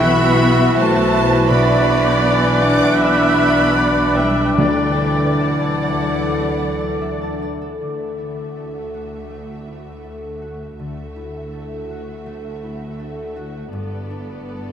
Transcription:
Already playing: double bass section B1, harp B2 G3 E4 E5 B5, french horn section E3 E4, clarinet F#4, cor anglais E5, flute F#6
0.02 harp E3, cello section B3, viola section F#4, violin section E5 B5
0.21 harp E4
0.59 harp E5
0.77 cello section A3, violin section C5 A5
0.96 harp B5
1.14 harp E5
1.32 harp B4
1.49 harp B2, cello section B3, french horn section D4, viola section D5, violin section D5 B5, cor anglais D5, flute F#6
1.69 harp D4
1.88 harp B4
2.07 harp D5
2.43 harp B5
2.62 cello section D4, harp D5, violin section F#5 D6
2.80 harp B4
2.99 cello section B3, violin section D5 B5, viola section E5
3.19 harp D4
3.38 harp B4
3.56 harp D5
3.76 viola section D5
3.97 harp B5
4.16 cello section G3, violin section B4 G5, harp D5, viola section E5
4.37 harp B4
4.58 double bass section D2, harp D3, timpani D3, french horn section E3, cello section G3, clarinet E4, violin section B4 G5, viola section D5, flute A6
4.79 harp D4
5.00 harp A4
5.21 harp D5
5.40 cello section F#3, violin section A4 F#5, harp E5
5.61 harp A5
5.81 harp D5
6.01 harp A4
6.20 harp A3
6.41 harp D4
6.61 harp A4
6.81 harp D5
7.01 harp E5
7.21 harp A5
7.42 harp D5
7.62 harp A4
7.80 cello section D2, double bass section D2, harp D3, viola section A3, violin section F#4 E5
8.18 harp E4
8.57 harp A4
8.94 harp F#4
9.30 harp A3
9.67 harp E4
10.04 harp A4
10.42 harp F#4
10.79 cello section D2, double bass section D2, harp D3, viola section A3, violin section F#4 E5
11.16 harp E4
11.53 harp A4
11.90 harp F#4
12.26 harp A3
12.63 harp E4
12.99 harp A4
13.36 harp F#4
13.73 double bass section G1, harp G2, cello section G2, viola section B3, violin section A4 D5
14.10 harp D4
14.48 harp B4

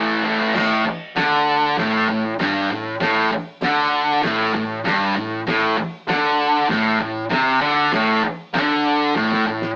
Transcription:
Already playing: distorted electric guitar A2 E3 A3
0.23 distorted electric guitar A2 E3 A3
0.40 distorted electric guitar E3 A3
0.54 picked electric bass A1, distorted electric guitar A2, kick, snare, crash
0.85 muted picked electric bass stroke, muted distorted electric guitar stroke, kick
1.16 picked electric bass D2, distorted electric guitar D3, snare, open hi-hat
1.77 picked electric bass A1, distorted electric guitar A2, kick, snare, open hi-hat
2.08 picked electric bass A1, distorted electric guitar A2, kick
2.39 picked electric bass G1, distorted electric guitar G2, snare, open hi-hat
2.69 picked electric bass A1, distorted electric guitar A2
3.00 picked electric bass A1, distorted electric guitar A2, kick, snare, open hi-hat
3.31 muted picked electric bass stroke, muted distorted electric guitar stroke, kick
3.61 picked electric bass D2, distorted electric guitar D3, snare, open hi-hat
4.23 picked electric bass A1, distorted electric guitar A2, kick, snare, open hi-hat
4.54 picked electric bass A1, distorted electric guitar A2, kick
4.84 picked electric bass G1, distorted electric guitar G2, snare, open hi-hat
5.15 picked electric bass A1, distorted electric guitar A2
5.46 picked electric bass A1, distorted electric guitar A2, kick, snare, open hi-hat
5.77 muted distorted electric guitar stroke, kick
6.07 picked electric bass D2, distorted electric guitar D3, snare, open hi-hat
6.69 picked electric bass A1, distorted electric guitar A2, kick, snare, open hi-hat
7.00 picked electric bass A1, distorted electric guitar A2, kick
7.30 picked electric bass C2, distorted electric guitar C3, snare, open hi-hat
7.61 picked electric bass D2, distorted electric guitar D3
7.92 picked electric bass A1, distorted electric guitar A2, kick, snare, open hi-hat
8.23 muted distorted electric guitar stroke, kick
8.54 picked electric bass D2, distorted electric guitar D3, snare, open hi-hat
9.15 picked electric bass A1, distorted electric guitar A2, kick, snare
9.32 snare
9.45 picked electric bass A1, distorted electric guitar A2
9.62 snare

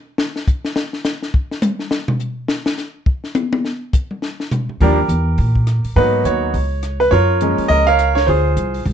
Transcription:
0.18 snare
0.36 snare
0.47 kick, hi-hat pedal
0.65 snare
0.76 snare
0.93 snare
1.05 snare, hi-hat pedal
1.23 snare
1.34 kick
1.51 snare
1.62 hi-hat pedal, mid tom
1.79 snare
1.91 snare
2.08 floor tom
2.19 hi-hat pedal
2.48 snare
2.66 snare
2.78 snare, hi-hat pedal
3.06 kick
3.24 snare
3.35 hi-hat pedal, high tom
3.53 high tom
3.65 snare
3.93 kick, hi-hat pedal
4.11 mid tom
4.22 snare
4.40 snare
4.51 floor tom, hi-hat pedal
4.69 floor tom
4.80 upright bass D#2, grand piano F3 G3 A#3 D4 G4 A#4, kick, open hi-hat
5.08 upright bass E2, closed hi-hat
5.38 upright bass A#2, kick, open hi-hat
5.55 kick
5.67 cross-stick, closed hi-hat
5.84 muted upright bass stroke, open hi-hat
5.96 upright bass G#2, grand piano F#3 A#3 B3 D#4 F#4 B4, kick, open hi-hat
6.24 upright bass D#2, grand piano F#4 C#5, closed hi-hat
6.54 upright bass C#2, kick, open hi-hat
6.83 cross-stick, closed hi-hat
7.00 grand piano B4, open hi-hat
7.11 upright bass F#2, grand piano F4 A#4 C#5, kick, open hi-hat
7.41 grand piano F3 G#3 A#3 C#4, closed hi-hat
7.58 muted upright bass stroke, open hi-hat
7.68 upright bass C#2, grand piano A#4 D#5, kick, open hi-hat
7.87 grand piano A#4 C#5 F5
7.99 cross-stick, closed hi-hat
8.15 grand piano C#5, snare
8.27 upright bass D2, grand piano F4 G#4 C5, kick, open hi-hat
8.57 upright bass C2, closed hi-hat
8.74 open hi-hat
8.85 upright bass C#2, kick, open hi-hat

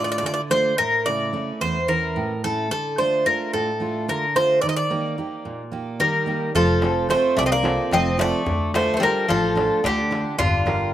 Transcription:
Already playing: steel-string acoustic guitar A2 A3 D4 F4
0.04 bouzouki D5
0.12 bouzouki D5
0.18 bouzouki D5
0.22 steel-string acoustic guitar D3, bouzouki D5
0.34 bouzouki D5
0.50 steel-string acoustic guitar A3 D4 F4, bouzouki C5
0.78 steel-string acoustic guitar A2, bouzouki A#4
1.06 steel-string acoustic guitar C#3 A3 E4, bouzouki D5
1.33 steel-string acoustic guitar A3 C#4 E4
1.61 steel-string acoustic guitar E2, bouzouki C5
1.88 steel-string acoustic guitar E3 C#4 E4, bouzouki A#4
2.16 steel-string acoustic guitar A2
2.44 steel-string acoustic guitar A3 C#4 E4, bouzouki A4
2.71 steel-string acoustic guitar D3, bouzouki A4
2.98 steel-string acoustic guitar A3 D4 F4, bouzouki C5
3.26 steel-string acoustic guitar A3 D4 F4, bouzouki A#4
3.53 steel-string acoustic guitar A2, bouzouki A4
3.80 steel-string acoustic guitar A3 D4 F4
4.08 steel-string acoustic guitar D3, bouzouki A#4
4.35 steel-string acoustic guitar A3 D4 F4, bouzouki C5
4.61 steel-string acoustic guitar D#3, bouzouki D5
4.69 bouzouki D#5
4.76 bouzouki D5
4.90 steel-string acoustic guitar A#3 D#4 G4
5.18 steel-string acoustic guitar A#3 D#4 G4
5.45 steel-string acoustic guitar A#2
5.72 steel-string acoustic guitar A#3 D#4 G4
6.00 steel-string acoustic guitar D#3, bouzouki G3 A#4
6.26 steel-string acoustic guitar A#3 D#4 G4
6.55 upright bass F1, steel-string acoustic guitar F3, bouzouki F3 A4, darbuka dum
6.82 steel-string acoustic guitar C4 F4 A4, darbuka tek
7.09 bouzouki A3 C5, steel-string acoustic guitar C4 F4 A4, darbuka tek
7.24 darbuka tek
7.36 upright bass C2, steel-string acoustic guitar C3, bouzouki A3 D5, darbuka tek
7.46 bouzouki C4 D#5
7.51 bouzouki A#3 D5, darbuka tek
7.63 steel-string acoustic guitar C4 F4 A4, darbuka tek
7.91 upright bass F1, steel-string acoustic guitar F3, bouzouki C4 D#5, darbuka tek
8.06 darbuka tek
8.18 bouzouki A3 D5, steel-string acoustic guitar C4 F4 A4, darbuka tek
8.46 upright bass D2, steel-string acoustic guitar D3, darbuka dum
8.74 bouzouki A3 C5, steel-string acoustic guitar D4 F4 A4, darbuka tek
8.94 bouzouki A3 C5
9.00 bouzouki G3 A#4, steel-string acoustic guitar D4 F4 A4, darbuka tek
9.16 darbuka tek
9.28 upright bass A1, bouzouki F3 A4, steel-string acoustic guitar A3, darbuka tek
9.44 darbuka tek
9.56 steel-string acoustic guitar D4 F4 A4, darbuka tek
9.84 upright bass D2, steel-string acoustic guitar D3, bouzouki D3 G4, darbuka tek
9.98 darbuka tek
10.11 steel-string acoustic guitar D4 F4 A4, darbuka tek
10.38 upright bass G1, bouzouki D3 F4, steel-string acoustic guitar G3, darbuka dum
10.66 steel-string acoustic guitar D4 G4 A#4, darbuka tek

